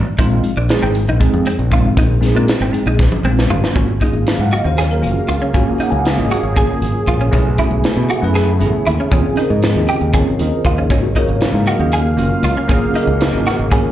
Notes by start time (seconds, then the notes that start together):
Already playing: D4
0.18 A#1 G#3 C4 D#4 F4, kick, closed hi-hat
0.44 muted fingered electric bass stroke, closed hi-hat
0.57 A#1 D4
0.69 G#3 C4 D#4 G#4, snare, closed hi-hat
0.82 G#1 C4
0.95 closed hi-hat
1.08 A#1 D#4
1.19 G#3 C4 D#4 G#4, kick, closed hi-hat
1.34 F2
1.46 C4, closed hi-hat
1.59 A#1
1.70 G#3 C4 D#4 F4, kick, closed hi-hat
1.84 G#1
1.97 A#1 D#4, kick, closed hi-hat
2.21 G#3 C4 D#4 G#4, snare, closed hi-hat
2.35 A#2 D4
2.48 muted fingered electric bass stroke, snare, closed hi-hat
2.60 G#1 C4
2.71 G#3 C4 D#4 G#4, muted fingered electric bass stroke, closed hi-hat
2.86 A#1 D#4
2.99 kick, snare
3.12 high tom
3.24 A#1 G#3 C4 D#4 F4
3.39 snare
3.50 G1 F4, floor tom
3.64 snare
3.73 G#1 C#3 F#3 A#3 C#4 F4 F#4 G#4 F5, kick, closed hi-hat
4.01 A#3 C#4 D#4 F4 G#4, kick, closed hi-hat
4.13 G#1
4.27 snare, closed hi-hat
4.39 G#2 F#5
4.52 F#4 D#5, closed hi-hat
4.64 D#2 A#3 C#4 F4 F#4 C5
4.78 G#4 C#5, snare, closed hi-hat
4.91 A#4
5.02 F#1 A#3 C#4 F4 F#4, closed hi-hat
5.28 C#2 F4, closed hi-hat
5.42 C#4
5.53 G#1 A#3 C#4 F4 F#4 G#5, kick, closed hi-hat
5.69 F5
5.79 D#4 F#5, muted fingered electric bass stroke, closed hi-hat
5.90 C#2 G#5
5.99 F#5
6.05 F5, snare, closed hi-hat
6.17 G#1 A#3 C#4 F4 G#4 D#5
6.31 F#4 C#5, closed hi-hat
6.43 G#1
6.54 A#3 C#4 F4 G#4, kick, closed hi-hat
6.82 G#1, closed hi-hat
7.07 A#1 F4, kick, closed hi-hat
7.21 C#4
7.32 B1 A3 B3 C#4 E4 G#4, kick, closed hi-hat
7.58 A3 C#4 E4 F#4, kick, closed hi-hat
7.71 B1
7.84 snare, closed hi-hat
7.97 B2
8.10 F#4, closed hi-hat
8.22 F#2 A3 C#4 E4 B4
8.35 G#4, snare, closed hi-hat
8.60 A1 A3 C#4 E4 G#4, closed hi-hat
8.87 D#2 E4, closed hi-hat
9.00 C#4
9.11 D#2 F3 C4 C#4 D#4 F4 G#4, kick, closed hi-hat
9.37 D#4 A#4 C5 D#5, muted fingered electric bass stroke, closed hi-hat
9.50 G#2
9.62 snare, closed hi-hat
9.75 D#2 C4 C#4 F4 G#4
9.88 G4, closed hi-hat
10.01 D#2
10.14 C4 C#4 F4 G#4 A#4 C#5, kick, closed hi-hat
10.39 D#2 D#4 A#4 C5 D#5, closed hi-hat
10.65 D#2 F4, kick, closed hi-hat
10.78 C#4
10.90 G#1 F#3 A#3 C#4 F4 F#4 F5, kick, closed hi-hat
11.15 A#3 C#4 D#4 F4 F#4 G#4 A#4 C#5, kick, closed hi-hat
11.29 G#1
11.41 snare, closed hi-hat
11.53 G#2
11.67 D#4 F#4 G#4 A#4 D#5, closed hi-hat
11.79 D#2 A#3 C#4 F4 G#4
11.92 G#4, closed hi-hat
12.17 F#1 A#3 C#4 F4 F#4, closed hi-hat
12.43 C#2 F4, closed hi-hat
12.57 C#4
12.68 G#1 A#3 C#4 F4 G#4, kick, closed hi-hat
12.95 D#4 G#4 A#4 D#5, muted fingered electric bass stroke, closed hi-hat
13.07 C#2
13.21 snare, closed hi-hat
13.31 G#1 A#3 C#4 F4 F#4
13.47 F#4, snare, closed hi-hat
13.59 G#1
13.71 A#3 C#4 F4 G#4 A#4 C#5, kick, closed hi-hat